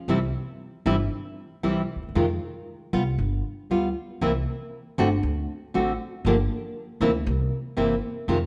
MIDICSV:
0, 0, Header, 1, 3, 480
1, 0, Start_track
1, 0, Tempo, 516351
1, 81, Time_signature, 4, 2, 24, 8
1, 3922, Tempo, 507614
1, 7933, End_track
2, 0, Start_track
2, 0, Title_t, "Nylon-string guitar"
2, 0, Program_c, 0, 24
2, 81, Note_on_c, 0, 48, 66
2, 81, Note_on_c, 0, 52, 70
2, 88, Note_on_c, 0, 55, 73
2, 88, Note_on_c, 0, 60, 66
2, 91, Note_on_c, 0, 64, 73
2, 165, Note_off_c, 0, 48, 0
2, 165, Note_off_c, 0, 52, 0
2, 168, Note_off_c, 0, 55, 0
2, 169, Note_off_c, 0, 60, 0
2, 170, Note_off_c, 0, 64, 0
2, 796, Note_on_c, 0, 48, 67
2, 798, Note_on_c, 0, 52, 78
2, 800, Note_on_c, 0, 55, 64
2, 803, Note_on_c, 0, 60, 75
2, 804, Note_on_c, 0, 64, 89
2, 881, Note_off_c, 0, 48, 0
2, 882, Note_off_c, 0, 52, 0
2, 883, Note_off_c, 0, 55, 0
2, 884, Note_off_c, 0, 60, 0
2, 885, Note_off_c, 0, 64, 0
2, 1519, Note_on_c, 0, 48, 48
2, 1519, Note_on_c, 0, 52, 60
2, 1520, Note_on_c, 0, 55, 52
2, 1524, Note_on_c, 0, 60, 57
2, 1524, Note_on_c, 0, 64, 64
2, 1681, Note_off_c, 0, 52, 0
2, 1682, Note_off_c, 0, 48, 0
2, 1682, Note_off_c, 0, 55, 0
2, 1684, Note_off_c, 0, 60, 0
2, 1684, Note_off_c, 0, 64, 0
2, 2002, Note_on_c, 0, 48, 62
2, 2003, Note_on_c, 0, 51, 61
2, 2005, Note_on_c, 0, 56, 68
2, 2010, Note_on_c, 0, 60, 70
2, 2012, Note_on_c, 0, 65, 65
2, 2089, Note_off_c, 0, 48, 0
2, 2089, Note_off_c, 0, 51, 0
2, 2090, Note_off_c, 0, 56, 0
2, 2093, Note_off_c, 0, 60, 0
2, 2094, Note_off_c, 0, 65, 0
2, 2725, Note_on_c, 0, 55, 67
2, 2725, Note_on_c, 0, 59, 81
2, 2730, Note_on_c, 0, 65, 74
2, 2809, Note_off_c, 0, 55, 0
2, 2809, Note_off_c, 0, 59, 0
2, 2812, Note_off_c, 0, 65, 0
2, 3446, Note_on_c, 0, 55, 58
2, 3451, Note_on_c, 0, 65, 66
2, 3453, Note_on_c, 0, 59, 52
2, 3604, Note_off_c, 0, 55, 0
2, 3606, Note_off_c, 0, 65, 0
2, 3607, Note_off_c, 0, 59, 0
2, 3918, Note_on_c, 0, 48, 65
2, 3920, Note_on_c, 0, 58, 65
2, 3921, Note_on_c, 0, 52, 71
2, 3923, Note_on_c, 0, 60, 66
2, 3928, Note_on_c, 0, 64, 71
2, 4005, Note_off_c, 0, 48, 0
2, 4007, Note_off_c, 0, 52, 0
2, 4007, Note_off_c, 0, 58, 0
2, 4008, Note_off_c, 0, 60, 0
2, 4010, Note_off_c, 0, 64, 0
2, 4643, Note_on_c, 0, 50, 73
2, 4648, Note_on_c, 0, 60, 83
2, 4649, Note_on_c, 0, 57, 75
2, 4655, Note_on_c, 0, 66, 80
2, 4729, Note_off_c, 0, 50, 0
2, 4732, Note_off_c, 0, 60, 0
2, 4733, Note_off_c, 0, 57, 0
2, 4736, Note_off_c, 0, 66, 0
2, 5363, Note_on_c, 0, 50, 59
2, 5366, Note_on_c, 0, 60, 64
2, 5367, Note_on_c, 0, 57, 56
2, 5371, Note_on_c, 0, 66, 63
2, 5523, Note_off_c, 0, 50, 0
2, 5525, Note_off_c, 0, 57, 0
2, 5525, Note_off_c, 0, 60, 0
2, 5527, Note_off_c, 0, 66, 0
2, 5852, Note_on_c, 0, 50, 69
2, 5856, Note_on_c, 0, 53, 68
2, 5858, Note_on_c, 0, 58, 84
2, 5859, Note_on_c, 0, 62, 79
2, 5862, Note_on_c, 0, 67, 72
2, 5933, Note_off_c, 0, 50, 0
2, 5935, Note_off_c, 0, 53, 0
2, 5936, Note_off_c, 0, 58, 0
2, 5936, Note_off_c, 0, 62, 0
2, 5938, Note_off_c, 0, 67, 0
2, 6559, Note_on_c, 0, 48, 70
2, 6564, Note_on_c, 0, 52, 71
2, 6564, Note_on_c, 0, 58, 85
2, 6567, Note_on_c, 0, 60, 87
2, 6569, Note_on_c, 0, 64, 69
2, 6644, Note_off_c, 0, 48, 0
2, 6647, Note_off_c, 0, 52, 0
2, 6647, Note_off_c, 0, 58, 0
2, 6649, Note_off_c, 0, 60, 0
2, 6650, Note_off_c, 0, 64, 0
2, 7276, Note_on_c, 0, 48, 54
2, 7279, Note_on_c, 0, 52, 56
2, 7281, Note_on_c, 0, 58, 64
2, 7283, Note_on_c, 0, 60, 67
2, 7284, Note_on_c, 0, 64, 65
2, 7439, Note_off_c, 0, 48, 0
2, 7440, Note_off_c, 0, 52, 0
2, 7441, Note_off_c, 0, 58, 0
2, 7442, Note_off_c, 0, 60, 0
2, 7443, Note_off_c, 0, 64, 0
2, 7763, Note_on_c, 0, 48, 65
2, 7767, Note_on_c, 0, 51, 57
2, 7769, Note_on_c, 0, 56, 73
2, 7770, Note_on_c, 0, 60, 70
2, 7771, Note_on_c, 0, 65, 76
2, 7847, Note_off_c, 0, 48, 0
2, 7849, Note_off_c, 0, 51, 0
2, 7850, Note_off_c, 0, 56, 0
2, 7851, Note_off_c, 0, 60, 0
2, 7851, Note_off_c, 0, 65, 0
2, 7933, End_track
3, 0, Start_track
3, 0, Title_t, "Upright bass"
3, 0, Program_c, 1, 32
3, 75, Note_on_c, 1, 36, 88
3, 279, Note_off_c, 1, 36, 0
3, 796, Note_on_c, 1, 31, 85
3, 998, Note_off_c, 1, 31, 0
3, 1517, Note_on_c, 1, 36, 43
3, 1724, Note_off_c, 1, 36, 0
3, 1819, Note_on_c, 1, 38, 40
3, 1878, Note_off_c, 1, 38, 0
3, 1884, Note_on_c, 1, 39, 47
3, 1933, Note_off_c, 1, 39, 0
3, 1939, Note_on_c, 1, 40, 53
3, 1996, Note_off_c, 1, 40, 0
3, 2002, Note_on_c, 1, 41, 73
3, 2206, Note_off_c, 1, 41, 0
3, 2725, Note_on_c, 1, 36, 84
3, 2926, Note_off_c, 1, 36, 0
3, 2960, Note_on_c, 1, 31, 79
3, 3165, Note_off_c, 1, 31, 0
3, 3438, Note_on_c, 1, 38, 47
3, 3642, Note_off_c, 1, 38, 0
3, 3918, Note_on_c, 1, 36, 76
3, 4124, Note_off_c, 1, 36, 0
3, 4643, Note_on_c, 1, 31, 93
3, 4847, Note_off_c, 1, 31, 0
3, 4879, Note_on_c, 1, 38, 90
3, 5085, Note_off_c, 1, 38, 0
3, 5364, Note_on_c, 1, 33, 52
3, 5566, Note_off_c, 1, 33, 0
3, 5839, Note_on_c, 1, 31, 88
3, 6043, Note_off_c, 1, 31, 0
3, 6556, Note_on_c, 1, 38, 87
3, 6761, Note_off_c, 1, 38, 0
3, 6802, Note_on_c, 1, 36, 96
3, 7005, Note_off_c, 1, 36, 0
3, 7280, Note_on_c, 1, 31, 49
3, 7483, Note_off_c, 1, 31, 0
3, 7762, Note_on_c, 1, 41, 81
3, 7933, Note_off_c, 1, 41, 0
3, 7933, End_track
0, 0, End_of_file